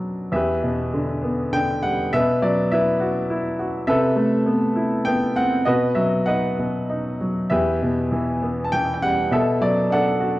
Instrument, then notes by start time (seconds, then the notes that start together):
grand piano
Already playing: B2 F#3 D4 F#4 D5
0.32 E2 G4 B4 E5
0.63 B2
0.94 D3
1.23 B3
1.53 D3 G5
1.83 G3 F#5
2.13 B2 B4 E5
2.42 F#3 D5
2.71 E4 B4 E5
3.00 F#4
3.30 E4
3.59 F#4
3.87 C3 A4 B4 E5
4.16 A3
4.46 B3
4.76 E4
5.05 B3 G5
5.36 C4 F#5
5.65 B2 F#4 B4 D#5
5.95 F#3 E5
6.26 D#4 B4 D#5 F#5
6.59 B2
6.89 D#4
7.21 F#3
7.50 E2 G4 B4 E5
7.82 B2
8.12 E3
8.42 B3
8.64 A5
8.72 E3 G5
8.94 G5
9.02 G3 F#5
9.31 B2 A4 E5
9.61 F#3 D5
9.90 D4 A4 D5 F#5
10.20 F#4